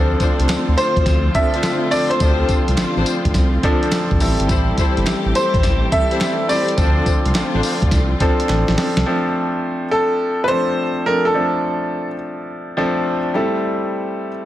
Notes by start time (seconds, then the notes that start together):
Already playing: D2 D3 F3 A3 C4 D4 F4 A4 C5
0.00 F3
0.20 D4 F4 A4 C5, kick, closed hi-hat, tambourine
0.40 C2, closed hi-hat
0.49 D2, snare, clap, closed hi-hat, tambourine
0.68 D2
0.77 D4 F4 A4 C5, closed hi-hat, tambourine
0.96 D2, kick, closed hi-hat
1.06 D2, kick, snare, closed hi-hat, tambourine
1.35 F3 C4 D4 A4 E5, kick, closed hi-hat
1.54 D4 F4 A4 C5, closed hi-hat
1.63 snare, clap, closed hi-hat, tambourine
1.91 F3 C4 D4 F4 A4 C5 D5, open hi-hat, tambourine
2.10 C5, closed hi-hat
2.20 D2 F3 C4 D4 F4 G4 A4 C5, kick, closed hi-hat, tambourine
2.29 A4
2.49 kick, closed hi-hat, tambourine
2.68 C2, closed hi-hat
2.77 A1, snare, clap, closed hi-hat, tambourine
2.97 A1 D4 F4 A4 C5
3.06 closed hi-hat, tambourine
3.25 D2, kick, closed hi-hat
3.34 C2, kick, snare, closed hi-hat, tambourine
3.63 F3 C4 D4 F4 A4 C5, kick, closed hi-hat
3.83 closed hi-hat
3.92 snare, clap, closed hi-hat, tambourine
4.11 A1, kick
4.20 A1 E3 G3 C4 E4 G4 A4, open hi-hat, tambourine
4.40 G#1, closed hi-hat
4.49 A1 E4 G4 A4 C5, kick, closed hi-hat, tambourine
4.78 E4 G4 A4 C5, kick, closed hi-hat, tambourine
4.97 G1, closed hi-hat
5.06 A1, snare, clap, closed hi-hat, tambourine
5.25 A1
5.35 E4 G4 A4 C5, closed hi-hat, tambourine
5.54 A1, kick, closed hi-hat
5.63 A1, kick, snare, closed hi-hat, tambourine
5.92 G3 C4 E4 A4 E5, kick, closed hi-hat
6.11 E4 G4 A4 C5, closed hi-hat
6.21 snare, clap, closed hi-hat, tambourine
6.48 G3 C4 E4 G4 A4 C5 D5, open hi-hat, tambourine
6.68 closed hi-hat
6.77 D2 D3 F3 A3 C4 D4 F4 A4 C5, kick, closed hi-hat, tambourine
7.06 kick, closed hi-hat, tambourine
7.26 C2, closed hi-hat
7.35 A1, snare, clap, closed hi-hat, tambourine
7.54 A1 D4 F4 A4 C5
7.63 open hi-hat, tambourine
7.82 D2, kick, closed hi-hat
7.91 C2, kick, snare, closed hi-hat, tambourine
8.20 F3 C4 D4 F4 A4 C5, kick, closed hi-hat
8.40 closed hi-hat
8.49 A1, snare, clap, closed hi-hat
8.68 A1, snare
8.77 F3 C4 D4 A4, snare, open hi-hat
8.97 C2, snare, closed hi-hat
9.06 F3 A3 C4 D4 A4
9.91 A4
10.44 B4 C5
10.49 F3 A3 C4 D4 A4
11.06 F3 A3 C4 D4 A4 A#4
11.25 A4
11.34 F3 A3 C4 D4 A4
12.77 F3 A3 C4 D4 A4
13.34 G3 A3 C4 E4 A4